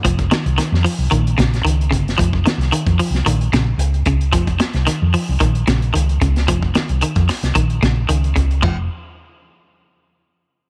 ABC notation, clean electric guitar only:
X:1
M:4/4
L:1/8
Q:"Swing 16ths" 1/4=112
K:Bbdor
V:1 name="Clean electric guitar" clef=bass
F, E, E, F, E, D, E, D, | F, E, E, F, E, D, z D, | F, z E, F, E, D, E, D, | F, E, E, z E, D, E, D, |
F, z6 z |]